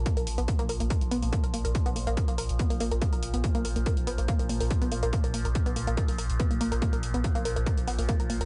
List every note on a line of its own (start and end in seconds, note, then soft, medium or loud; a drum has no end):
0.00 8.45 A#2 medium
0.00 8.45 F3 medium
0.06 0.16 A#3 medium
0.06 kick loud
0.06 closed hi-hat medium
0.17 0.26 A#1 medium
0.17 0.20 A#4 medium
0.17 closed hi-hat medium
0.27 0.37 A#1 loud
0.27 open hi-hat loud
0.38 0.48 A#1 medium
0.38 0.44 B3 loud
0.38 closed hi-hat medium
0.48 0.52 A#3 medium
0.48 kick loud
0.48 closed hi-hat medium
0.59 0.69 A#1 medium
0.59 0.65 A#3 loud
0.59 closed hi-hat medium
0.69 0.80 A#1 medium
0.69 0.79 A#4 medium
0.69 open hi-hat loud
0.80 0.90 A#1 medium
0.80 0.89 A#3 medium
0.80 closed hi-hat medium
0.90 0.94 A#4 medium
0.90 kick loud
0.90 closed hi-hat medium
1.01 1.11 A#1 medium
1.01 closed hi-hat medium
1.11 1.22 A#1 loud
1.11 1.18 B3 loud
1.11 open hi-hat loud
1.22 1.32 A#1 medium
1.22 1.26 A#3 medium
1.22 open hi-hat medium
1.32 1.39 A#3 loud
1.32 kick loud
1.32 closed hi-hat medium
1.44 1.53 A#1 medium
1.44 1.53 A#4 medium
1.44 closed hi-hat medium
1.54 1.64 A#1 loud
1.54 1.64 A#3 medium
1.54 open hi-hat loud
1.65 1.75 A#1 medium
1.65 1.68 A#4 medium
1.65 closed hi-hat medium
1.75 kick loud
1.75 closed hi-hat medium
1.86 1.95 A#1 medium
1.86 1.92 B3 loud
1.86 closed hi-hat medium
1.96 2.06 A#1 loud
1.96 2.00 A#3 medium
1.96 open hi-hat loud
2.07 2.17 A#1 medium
2.07 2.13 A#3 loud
2.07 closed hi-hat soft
2.17 2.27 A#4 medium
2.17 kick loud
2.17 closed hi-hat medium
2.28 2.38 A#1 medium
2.28 2.37 A#3 medium
2.28 closed hi-hat medium
2.38 2.49 A#1 loud
2.38 2.42 A#4 medium
2.38 open hi-hat loud
2.49 2.59 A#1 medium
2.49 closed hi-hat medium
2.59 2.66 B3 loud
2.59 kick loud
2.59 closed hi-hat medium
2.70 2.80 A#1 medium
2.70 2.74 A#3 medium
2.70 open hi-hat medium
2.80 2.91 A#1 loud
2.80 2.87 A#3 loud
2.80 open hi-hat loud
2.91 3.01 A#1 medium
2.91 3.01 A#4 medium
2.91 closed hi-hat medium
3.02 3.11 A#3 medium
3.02 kick loud
3.02 closed hi-hat medium
3.13 3.22 A#1 medium
3.13 3.16 A#4 medium
3.13 closed hi-hat medium
3.23 3.33 A#1 loud
3.23 open hi-hat loud
3.34 3.44 A#1 medium
3.34 3.40 B3 loud
3.34 closed hi-hat medium
3.44 3.48 A#3 medium
3.44 kick loud
3.44 closed hi-hat medium
3.55 3.64 A#1 medium
3.55 3.61 A#3 loud
3.55 closed hi-hat medium
3.65 3.75 A#1 loud
3.65 3.75 A#4 medium
3.65 open hi-hat loud
3.76 3.86 A#1 medium
3.76 3.85 A#3 medium
3.76 closed hi-hat medium
3.86 3.90 A#4 medium
3.86 kick loud
3.86 closed hi-hat medium
3.97 4.07 A#1 medium
3.97 closed hi-hat medium
4.07 4.18 A#1 loud
4.07 4.14 B3 loud
4.07 open hi-hat loud
4.18 4.28 A#1 medium
4.18 4.22 A#3 medium
4.18 closed hi-hat medium
4.28 4.35 A#3 loud
4.28 kick loud
4.28 closed hi-hat medium
4.39 4.49 A#1 medium
4.39 4.48 A#4 medium
4.39 closed hi-hat soft
4.49 4.60 A#1 loud
4.49 4.59 A#3 medium
4.49 open hi-hat loud
4.60 4.70 A#1 medium
4.60 4.64 A#4 medium
4.60 open hi-hat medium
4.71 kick loud
4.71 closed hi-hat medium
4.82 4.91 A#1 medium
4.82 4.88 B3 loud
4.82 closed hi-hat medium
4.92 5.02 A#1 loud
4.92 4.96 A#3 medium
4.92 open hi-hat loud
5.03 5.13 A#1 medium
5.03 5.09 A#3 loud
5.03 closed hi-hat medium
5.13 5.19 A#3 loud
5.13 kick loud
5.13 closed hi-hat medium
5.24 5.33 A#1 medium
5.24 5.33 A#4 medium
5.24 closed hi-hat medium
5.34 5.44 A#1 loud
5.34 5.44 A#3 medium
5.34 open hi-hat loud
5.45 5.55 A#1 medium
5.45 5.49 A#4 medium
5.45 closed hi-hat soft
5.55 kick loud
5.55 closed hi-hat medium
5.66 5.76 A#1 medium
5.66 5.72 B3 loud
5.66 closed hi-hat soft
5.76 5.87 A#1 loud
5.76 5.80 A#3 medium
5.76 open hi-hat loud
5.87 5.97 A#1 medium
5.87 5.93 A#3 loud
5.87 closed hi-hat medium
5.97 6.07 A#4 medium
5.97 kick loud
5.97 closed hi-hat medium
6.08 6.18 A#1 medium
6.08 6.17 A#3 medium
6.08 open hi-hat medium
6.18 6.29 A#1 loud
6.18 6.22 A#4 medium
6.18 open hi-hat loud
6.30 6.39 A#1 medium
6.30 closed hi-hat medium
6.40 6.46 B3 loud
6.40 kick loud
6.40 closed hi-hat medium
6.51 6.60 A#1 medium
6.51 6.54 A#3 medium
6.51 closed hi-hat medium
6.61 6.71 A#1 loud
6.61 6.67 A#3 loud
6.61 open hi-hat loud
6.72 6.82 A#1 medium
6.72 6.81 A#4 medium
6.72 closed hi-hat medium
6.82 6.92 A#3 medium
6.82 kick loud
6.82 closed hi-hat medium
6.93 7.02 A#1 medium
6.93 6.97 A#4 medium
6.93 closed hi-hat medium
7.03 7.13 A#1 loud
7.03 open hi-hat medium
7.14 7.24 A#1 medium
7.14 7.20 B3 loud
7.14 closed hi-hat soft
7.24 7.28 A#3 medium
7.24 kick loud
7.24 closed hi-hat medium
7.35 7.45 A#1 medium
7.35 7.41 A#3 loud
7.35 closed hi-hat soft
7.45 7.56 A#1 loud
7.45 7.55 A#4 medium
7.45 open hi-hat loud
7.56 7.66 A#1 medium
7.56 7.65 A#3 medium
7.56 closed hi-hat medium
7.66 7.70 A#4 medium
7.66 kick loud
7.66 closed hi-hat medium
7.77 7.87 A#1 medium
7.77 closed hi-hat medium
7.87 7.98 A#1 loud
7.87 7.94 B3 loud
7.87 open hi-hat loud
7.99 8.08 A#1 medium
7.99 8.02 A#3 medium
7.99 open hi-hat medium
8.09 8.15 A#3 loud
8.09 kick loud
8.09 closed hi-hat medium
8.20 8.29 A#1 medium
8.20 8.29 A#4 medium
8.20 closed hi-hat medium
8.30 8.40 A#1 loud
8.30 8.40 A#3 medium
8.30 open hi-hat loud
8.41 8.45 A#1 medium
8.41 8.44 A#4 medium
8.41 closed hi-hat medium